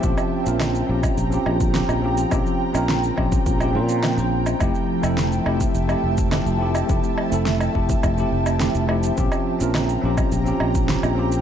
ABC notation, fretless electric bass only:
X:1
M:4/4
L:1/16
Q:1/4=105
K:Bblyd
V:1 name="Fretless electric bass" clef=bass
B,,, z2 B,,,2 z B,,, z B,,, z B,,,2 z B,,,2 z | B,,, z2 B,,,2 z B,,, z B,,,2 B,,3 B,,,2 z | F,,, z2 F,,,2 z F,,, z F,,, z F,,,2 z F,,,2 z | F,,, z2 F,,,2 z F,,, z F,,, z F,,,2 z F,,,2 z |
B,,, z2 B,,,2 z B,,, z B,,, z B,,,2 z B,,,2 z |]